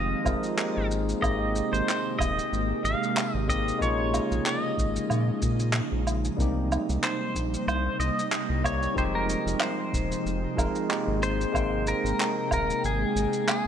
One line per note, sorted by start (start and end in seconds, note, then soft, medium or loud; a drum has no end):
0.00 0.15 F1 medium
0.00 0.88 D#3 medium
0.00 0.21 F3 medium
0.00 0.21 G#3 medium
0.00 3.76 G#3 medium
0.00 0.22 C4 medium
0.00 0.88 C4 medium
0.00 0.23 D#4 medium
0.00 0.88 F4 medium
0.00 0.23 G4 medium
0.00 0.86 D#5 medium
0.25 0.37 F1 medium
0.25 0.54 F3 medium
0.25 0.54 G#3 medium
0.25 0.55 C4 medium
0.25 0.55 D#4 medium
0.25 0.55 A#4 medium
0.25 kick loud
0.25 low woodblock medium
0.25 shaker medium
0.43 shaker soft
0.57 1.18 G#3 medium
0.57 1.19 A#3 medium
0.57 1.19 C4 medium
0.57 1.19 D#4 medium
0.57 1.20 G4 medium
0.57 clap medium
0.57 shaker soft
0.77 1.15 G#1 loud
0.91 3.78 C3 medium
0.91 3.79 A#3 medium
0.91 3.78 G4 medium
0.91 shaker medium
1.09 shaker medium
1.20 1.62 G#1 loud
1.20 3.44 G#3 medium
1.20 3.44 A#3 medium
1.20 3.45 C4 medium
1.20 3.45 D#4 medium
1.20 1.74 D#5 medium
1.20 kick loud
1.20 low woodblock medium
1.20 shaker soft
1.25 3.46 G4 medium
1.56 shaker medium
1.73 1.82 G#1 medium
1.73 2.21 C5 medium
1.73 shaker medium
1.89 clap medium
1.89 shaker medium
2.19 2.41 D#1 medium
2.19 2.85 D#5 loud
2.19 kick loud
2.19 low woodblock medium
2.19 shaker medium
2.39 shaker medium
2.52 2.73 G#1 loud
2.52 shaker soft
2.84 2.95 G#1 medium
2.84 3.35 F5 loud
2.84 shaker medium
3.03 shaker medium
3.17 clap loud
3.17 low woodblock medium
3.17 shaker soft
3.34 3.72 G#1 loud
3.34 3.49 D#5 loud
3.47 3.77 G#3 medium
3.47 3.77 A#3 medium
3.47 3.78 C4 medium
3.47 3.78 D#4 medium
3.47 3.78 G4 medium
3.47 3.82 D#5 medium
3.47 kick loud
3.47 shaker medium
3.68 shaker medium
3.79 4.20 A#1 medium
3.79 6.37 C#3 medium
3.79 6.36 F3 medium
3.79 5.38 G#3 medium
3.79 6.37 G#3 medium
3.79 5.38 A#3 medium
3.79 5.39 C#4 medium
3.79 6.37 D#4 medium
3.79 4.47 C#5 medium
3.79 kick loud
3.79 shaker soft
3.83 5.40 D#4 medium
3.83 5.40 F4 loud
4.14 low woodblock medium
4.14 shaker medium
4.31 4.40 A#1 medium
4.31 shaker medium
4.46 6.04 D#5 medium
4.46 clap medium
4.46 shaker medium
4.78 4.99 G#1 medium
4.78 kick loud
4.78 shaker medium
4.96 shaker medium
5.10 5.31 A#2 medium
5.10 low woodblock medium
5.10 shaker soft
5.42 5.81 A#2 medium
5.42 kick loud
5.42 shaker medium
5.60 shaker medium
5.73 clap medium
5.73 shaker soft
5.92 6.30 A#1 loud
6.07 low woodblock medium
6.07 shaker medium
6.25 shaker medium
6.36 6.78 C2 loud
6.36 8.95 C3 medium
6.36 8.60 G3 medium
6.36 8.95 G3 medium
6.36 8.61 A#3 medium
6.36 8.95 A#3 medium
6.36 8.61 C4 medium
6.36 11.19 D#4 medium
6.36 8.62 D#4 medium
6.36 kick loud
6.36 shaker soft
6.42 8.63 G4 medium
6.72 low woodblock medium
6.72 shaker medium
6.89 6.98 C2 medium
6.89 shaker medium
7.04 7.67 C5 medium
7.04 clap medium
7.04 shaker soft
7.35 7.57 A#1 medium
7.35 kick loud
7.35 shaker medium
7.54 shaker medium
7.68 7.89 C2 medium
7.68 7.99 C5 medium
7.68 low woodblock medium
7.68 shaker medium
7.99 8.11 C2 medium
7.99 8.65 D#5 loud
7.99 shaker medium
8.19 shaker medium
8.32 clap medium
8.32 shaker soft
8.49 8.88 C2 loud
8.63 8.93 G3 medium
8.63 8.93 A#3 medium
8.63 8.93 C4 medium
8.63 8.93 D#4 medium
8.63 8.94 G4 medium
8.63 8.98 C#5 medium
8.63 kick medium
8.63 low woodblock medium
8.63 shaker medium
8.83 shaker medium
8.94 9.36 F1 loud
8.94 13.67 C3 medium
8.94 10.53 F3 medium
8.94 11.20 F3 medium
8.94 10.54 G#3 medium
8.94 13.67 G#3 medium
8.94 10.55 C4 medium
8.94 10.55 D#4 medium
8.94 9.03 C5 medium
8.94 kick loud
8.94 shaker medium
8.99 10.56 G4 medium
9.15 9.62 A#4 medium
9.29 shaker medium
9.46 9.55 F1 medium
9.46 shaker medium
9.60 10.87 C5 medium
9.60 clap medium
9.60 low woodblock medium
9.60 shaker soft
9.93 10.15 D#1 medium
9.93 kick loud
9.93 shaker medium
10.12 shaker medium
10.26 10.47 F1 loud
10.26 shaker soft
10.56 10.69 F1 medium
10.56 10.86 F3 medium
10.56 10.87 G#3 medium
10.56 10.87 C4 medium
10.56 10.87 D#4 medium
10.56 10.87 A#4 loud
10.56 kick loud
10.56 low woodblock medium
10.56 shaker medium
10.75 shaker medium
10.89 11.51 G#3 medium
10.89 11.51 A#3 medium
10.89 11.51 C4 medium
10.89 11.52 D#4 medium
10.89 11.52 G4 medium
10.89 clap medium
10.89 shaker soft
11.08 11.46 G#1 loud
11.23 13.67 A#3 medium
11.23 11.89 C5 loud
11.23 13.67 G5 medium
11.23 shaker medium
11.41 shaker soft
11.52 11.94 G#1 loud
11.52 13.67 G#3 medium
11.52 13.67 A#3 medium
11.52 13.67 C4 medium
11.52 13.67 D#4 medium
11.52 kick loud
11.52 low woodblock medium
11.52 shaker soft
11.58 13.67 G5 medium
11.87 12.52 A#4 loud
11.87 shaker medium
12.04 12.14 G#1 medium
12.04 shaker medium
12.20 clap loud
12.20 shaker soft
12.51 12.73 D#1 loud
12.51 12.85 A#4 loud
12.51 kick medium
12.51 low woodblock medium
12.51 shaker medium
12.70 shaker medium
12.84 13.05 G#1 loud
12.84 13.48 G#4 medium
12.84 shaker soft
13.16 13.27 G#1 medium
13.16 shaker medium
13.33 shaker medium
13.48 13.67 G#4 medium
13.48 clap medium
13.48 low woodblock medium
13.48 shaker soft